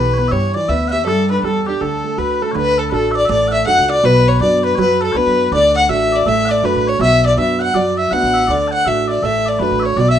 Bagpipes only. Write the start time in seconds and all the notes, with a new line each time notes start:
Already playing: B4
0.14 C#5
0.18 B4
0.28 C#5 E5
0.54 D5
0.68 E5
0.88 E5 F#5
1.08 A4
1.30 B4
1.44 A4
1.67 G4
1.82 A4
2.18 B4
2.42 A4
2.51 B4 C#5
2.78 A4
2.90 B4
2.94 A4
3.11 D5 E5
3.25 E5
3.29 D5
3.48 E5 F#5
3.66 F#5
3.90 D5
4.05 B4
4.41 D5
4.63 B4
4.75 B4 C#5
5.00 A4
5.12 B4 C#5
5.52 D5
5.77 F#5
5.89 E5
6.12 D5
6.26 E5
6.45 D5 F#5
6.65 B4
6.87 C#5
7.01 E5
7.25 D5
7.38 E5
7.59 F#5
7.74 D5
7.97 E5
8.11 F#5
8.33 E5
8.47 D5
8.68 F#5 A5
8.85 E5
9.08 D5
9.23 E5
9.46 D5
9.59 B4
9.80 C#5 E5
9.97 D5
10.08 E5